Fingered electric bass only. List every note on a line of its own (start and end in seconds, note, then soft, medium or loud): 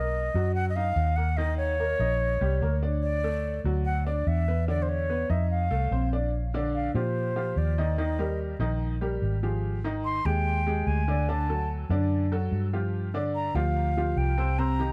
0.00 0.28 B1 loud
0.34 0.92 F#2 medium
0.96 1.93 D#2 medium
1.99 2.38 A#1 medium
2.41 2.60 C2 medium
2.62 3.59 D2 medium
3.64 4.22 D2 medium
4.27 5.24 E2 loud
5.30 5.68 F2 medium
5.71 5.90 C2 medium
5.91 6.88 A#1 medium
6.94 7.52 A#2 medium
7.56 8.53 D#2 medium
8.59 9.18 A#1 medium
9.22 10.19 G#1 medium
10.25 10.83 D#2 medium
10.87 11.84 D2 medium
11.89 12.48 F#2 medium
12.52 13.49 G2 medium
13.55 14.13 D2 medium
14.16 14.93 C2 medium